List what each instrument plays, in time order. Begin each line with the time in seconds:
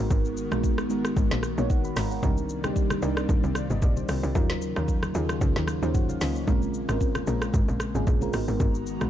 Already playing: analog synth pad D#3 G#3 B3 F#4 A#4, fm electric piano G#3 B3 D#4 F#4 A#4
0.10 log drum bass G#1, kick, shaker
0.25 shaker
0.37 shaker
0.51 log drum bass A#1, fm electric piano G#3 B3 D#4 F#4 A#4, cross-stick, shaker
0.64 kick, shaker
0.78 cross-stick, shaker
0.89 log drum bass G#1, fm electric piano G#3 B3 D#4 F#4 A#4, shaker
1.05 cross-stick, shaker
1.17 log drum bass G#1, kick, shaker
1.31 log drum bass A#1, snare, shaker
1.43 cross-stick, shaker
1.57 log drum bass A#1, fm electric piano G#3 B3 D#4 F#4 C#5, shaker
1.70 fm electric piano F#5, kick, shaker
1.85 fm electric piano F#5 B5, shaker
1.96 log drum bass G#1, fm electric piano F5 A#5, cross-stick, snare, open hi-hat, shaker
2.11 fm electric piano C#5 F#5, shaker
2.22 log drum bass C2, analog synth pad C3 G3 A#3 D5, fm electric piano G3 C4 D4 D#4 A#4, kick, low conga, shaker
2.37 shaker
2.49 shaker
2.63 log drum bass A#1, fm electric piano G3 C4 D4 D#4 G4, cross-stick, high conga, shaker
2.76 kick, shaker
2.90 cross-stick, high conga, shaker
3.02 log drum bass C2, fm electric piano G3 C4 D4 D#4 A#4, shaker
3.17 cross-stick, shaker
3.29 log drum bass A#1, kick, low conga, shaker
3.44 log drum bass C2, high conga, shaker
3.55 fm electric piano C5 F5, cross-stick, shaker
3.70 log drum bass G1, fm electric piano A#4 D#5, high conga, shaker
3.82 log drum bass A#1, fm electric piano G4 D5, kick, low conga, shaker
3.97 fm electric piano G4 C5, high conga, shaker
4.09 log drum bass C2, fm electric piano F4 A#4, cross-stick, open hi-hat, shaker
4.23 log drum bass C2, fm electric piano D4 G4, shaker
4.34 log drum bass D#2, analog synth pad C#3 D#3 F#3 A#3 F4, fm electric piano F#3 C#4 D#4 F4 A#4, kick, low conga, shaker
4.50 snare, shaker
4.62 shaker
4.76 log drum bass D#2, fm electric piano F#3 C#4 D#4 F4 A#4, cross-stick, high conga, shaker
4.88 kick, shaker
5.03 cross-stick, high conga, shaker
5.14 log drum bass D#2, fm electric piano F#3 C#4 D#4 F4 G#4, shaker
5.29 cross-stick, shaker
5.41 log drum bass C#2, kick, low conga, shaker
5.56 log drum bass D#2, snare, high conga, shaker
5.68 cross-stick, shaker
5.82 log drum bass D#2, fm electric piano F#3 C#4 D#4 F4 C5, high conga, shaker
5.95 fm electric piano C#5 F#5, kick, low conga, shaker
6.09 fm electric piano C5 F5, high conga, shaker
6.21 log drum bass C#2, fm electric piano A#4 D#5, snare, open hi-hat, shaker
6.36 fm electric piano G#4 C#5, shaker
6.47 log drum bass A#1, fm electric piano G#3 C4 C#4 F4 A#4, analog synth pad G#3, kick, low conga, shaker
6.62 shaker
6.74 shaker
6.88 log drum bass G#1, fm electric piano G#3 C4 C#4 F4 A#4, cross-stick, high conga, shaker
7.01 kick, shaker
7.15 cross-stick, high conga, shaker
7.27 log drum bass A#1, fm electric piano G#3 C4 C#4 F4 A#4, shaker
7.42 cross-stick, shaker
7.54 log drum bass G#1, kick, low conga, shaker
7.68 log drum bass A#1, high conga, shaker
7.80 cross-stick, shaker
7.94 log drum bass G#1, fm electric piano G#3 C4 C#4 F4 G#4, high conga, shaker
8.07 log drum bass A#1, kick, low conga, shaker
8.21 fm electric piano G#3 C4 C#4 F4 A#4, high conga, shaker
8.33 log drum bass G#1, analog synth pad D#3 G#3 B3 F#4 A#5, fm electric piano G#3 B3 D#4 F#4 A#4, cross-stick, open hi-hat, shaker
8.48 log drum bass G#1, shaker
8.60 log drum bass G#1, kick, low conga, shaker
8.75 shaker
8.87 shaker
9.00 log drum bass A#1, fm electric piano G#3 B3 D#4 F#4 B4, cross-stick, high conga, shaker